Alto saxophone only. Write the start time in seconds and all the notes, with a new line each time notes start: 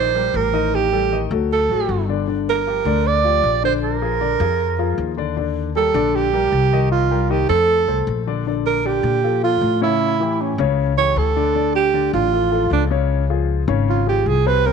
Already playing: C5
0.36 A#4
0.75 G4
1.52 A4
2.49 A#4
3.07 D5
3.65 C5
3.83 A#4
5.77 A4
6.15 G4
6.91 F4
7.30 G4
7.49 A4
8.66 A#4
8.86 G4
9.44 F4
9.83 E4
10.41 C#4
10.98 C#5
11.18 A4
11.75 G4
12.14 F4
12.73 D4
13.89 F4
14.08 G4
14.28 G#4
14.47 B4
14.66 A#4